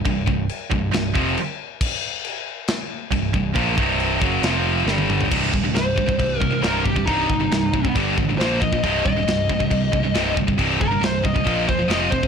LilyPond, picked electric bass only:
\new Staff \with { instrumentName = "Picked electric bass" } { \clef bass \time 4/4 \key c \minor \tempo 4 = 137 c,,8 c,,8 r8 c,,8 c,,8 f,,8 r4 | r2. c,,8 c,,8 | bes,,8 c,,4 fis,,8 f,,4 g,,4 | c,,8 ees,,8 c,,8 c,,8 c,8 c,8 c,,8 g,,8 |
c,,8 g,,8 c,,8 c,,8 g,,8 a,,8 bes,,8 bes,,8 | c,,8 ees,,8 c,,8 c,,8 c,8 c,8 c,,8 g,,8 | c,,8 g,,8 c,,8 c,,8 bes,,8 ees,,8 f,,8 f,,8 | }